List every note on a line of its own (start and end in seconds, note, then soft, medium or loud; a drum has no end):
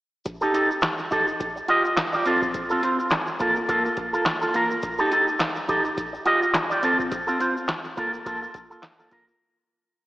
0.25 muted clean electric guitar stroke soft
0.25 kick loud
0.25 closed hi-hat medium
0.25 shaker medium
0.41 0.52 D#4 medium
0.41 0.53 G4 medium
0.41 0.54 A4 medium
0.41 shaker medium
0.54 0.70 D#4 medium
0.54 0.70 G4 medium
0.54 0.69 A4 medium
0.54 closed hi-hat medium
0.54 shaker medium
0.70 muted clean electric guitar stroke soft
0.70 shaker medium
0.82 snare loud
0.82 clap medium
0.82 closed hi-hat medium
0.82 shaker medium
0.98 muted clean electric guitar stroke soft
0.98 shaker soft
1.11 1.30 D#4 medium
1.11 1.27 G4 medium
1.11 1.26 A4 medium
1.11 kick medium
1.11 closed hi-hat medium
1.11 shaker soft
1.27 muted clean electric guitar stroke soft
1.27 shaker soft
1.40 kick loud
1.40 closed hi-hat medium
1.40 shaker medium
1.56 muted clean electric guitar stroke soft
1.56 shaker soft
1.68 1.88 F4 medium
1.68 1.84 G4 medium
1.68 1.84 D#5 medium
1.68 closed hi-hat medium
1.84 muted clean electric guitar stroke soft
1.84 shaker medium
1.97 muted clean electric guitar stroke soft
1.97 snare loud
1.97 clap medium
1.97 closed hi-hat medium
1.97 shaker medium
2.13 2.25 F4 medium
2.13 2.26 G4 medium
2.13 2.25 D5 medium
2.13 shaker medium
2.25 2.45 C4 medium
2.25 2.42 F4 medium
2.25 2.40 A4 medium
2.25 closed hi-hat medium
2.25 shaker medium
2.42 muted clean electric guitar stroke soft
2.42 kick medium
2.42 shaker soft
2.54 muted clean electric guitar stroke soft
2.54 kick loud
2.54 closed hi-hat medium
2.54 shaker medium
2.70 2.81 C4 medium
2.70 2.82 F4 medium
2.70 2.84 A4 medium
2.70 shaker medium
2.82 2.98 C4 medium
2.82 2.99 F4 medium
2.82 2.98 C5 medium
2.82 closed hi-hat medium
2.82 shaker soft
2.99 muted clean electric guitar stroke soft
2.99 shaker soft
3.10 snare loud
3.10 clap medium
3.10 closed hi-hat medium
3.10 shaker medium
3.27 muted clean electric guitar stroke soft
3.27 shaker soft
3.39 3.59 A#3 medium
3.39 3.56 F4 medium
3.39 3.55 A4 medium
3.39 kick medium
3.39 closed hi-hat medium
3.39 shaker soft
3.56 muted clean electric guitar stroke soft
3.56 shaker soft
3.68 3.88 A#3 medium
3.68 3.85 F4 medium
3.68 3.83 A4 medium
3.68 kick loud
3.68 closed hi-hat medium
3.68 shaker medium
3.85 muted clean electric guitar stroke soft
3.85 shaker soft
3.97 muted clean electric guitar stroke soft
3.97 kick medium
3.97 closed hi-hat medium
4.13 4.24 A#3 medium
4.13 4.25 F4 medium
4.13 4.25 A4 medium
4.13 shaker medium
4.26 muted clean electric guitar stroke soft
4.26 snare loud
4.26 clap medium
4.26 closed hi-hat medium
4.26 shaker medium
4.41 4.53 A#3 soft
4.41 4.54 F4 medium
4.41 4.54 A4 medium
4.41 shaker medium
4.54 4.73 A#3 medium
4.54 4.70 F4 medium
4.54 4.70 A#4 medium
4.54 closed hi-hat medium
4.54 shaker medium
4.70 muted clean electric guitar stroke soft
4.70 shaker medium
4.83 muted clean electric guitar stroke soft
4.83 kick loud
4.83 closed hi-hat medium
4.83 shaker medium
4.98 5.10 D#4 medium
4.98 5.11 G4 medium
4.98 5.12 A4 medium
4.98 shaker medium
5.11 5.27 D#4 medium
5.11 5.27 G4 medium
5.11 5.26 A4 medium
5.11 closed hi-hat medium
5.11 shaker medium
5.27 muted clean electric guitar stroke soft
5.27 shaker soft
5.39 snare loud
5.39 clap medium
5.39 closed hi-hat medium
5.39 shaker medium
5.56 muted clean electric guitar stroke soft
5.56 shaker soft
5.68 5.88 D#4 medium
5.68 5.84 G4 medium
5.68 5.83 A4 medium
5.68 kick medium
5.68 closed hi-hat medium
5.68 shaker soft
5.84 muted clean electric guitar stroke soft
5.84 shaker soft
5.97 kick loud
5.97 closed hi-hat medium
5.97 shaker medium
6.13 muted clean electric guitar stroke soft
6.13 shaker soft
6.25 6.45 F4 medium
6.25 6.42 G4 medium
6.25 6.41 D#5 medium
6.25 closed hi-hat medium
6.42 muted clean electric guitar stroke soft
6.42 shaker soft
6.54 muted clean electric guitar stroke soft
6.54 snare loud
6.54 clap medium
6.54 closed hi-hat medium
6.54 shaker medium
6.70 6.82 F4 soft
6.70 6.83 G4 soft
6.70 6.82 D5 medium
6.70 shaker medium
6.83 7.02 C4 medium
6.83 6.99 F4 medium
6.83 6.97 A4 medium
6.83 closed hi-hat medium
6.83 shaker medium
6.98 muted clean electric guitar stroke medium
6.98 kick medium
6.98 shaker soft
7.11 muted clean electric guitar stroke soft
7.11 kick loud
7.11 closed hi-hat medium
7.11 shaker medium
7.27 7.38 C4 medium
7.27 7.39 F4 medium
7.27 7.41 A4 medium
7.27 shaker medium
7.40 7.56 C4 medium
7.40 7.56 F4 medium
7.40 7.55 C5 medium
7.40 closed hi-hat medium
7.40 shaker medium
7.56 muted clean electric guitar stroke soft
7.56 shaker medium
7.68 snare loud
7.68 clap medium
7.68 closed hi-hat medium
7.68 shaker medium
7.84 muted clean electric guitar stroke soft
7.84 shaker soft
7.97 8.16 A#3 medium
7.97 8.13 F4 medium
7.97 8.12 A4 medium
7.97 kick medium
7.97 closed hi-hat medium
7.97 shaker soft
8.13 muted clean electric guitar stroke soft
8.13 shaker soft
8.25 8.45 A#3 medium
8.25 8.41 F4 medium
8.25 8.40 A4 medium
8.25 kick loud
8.25 closed hi-hat medium
8.25 shaker medium
8.41 muted clean electric guitar stroke soft
8.41 shaker soft
8.54 muted clean electric guitar stroke soft
8.54 kick medium
8.54 closed hi-hat medium
8.54 shaker medium
8.70 8.82 A#3 soft
8.70 8.82 F4 medium
8.70 8.83 A4 medium
8.70 shaker medium
8.83 muted clean electric guitar stroke soft
8.83 snare loud
8.83 clap medium
8.83 closed hi-hat medium
8.83 shaker medium
8.99 9.10 A#3 medium
8.99 9.11 F4 medium
8.99 9.11 A4 medium
8.99 shaker medium
9.11 9.30 A#3 medium
9.11 9.27 F4 medium
9.11 9.27 A#4 loud
9.11 kick loud
9.11 closed hi-hat medium
9.11 shaker medium
9.27 muted clean electric guitar stroke soft
9.27 shaker medium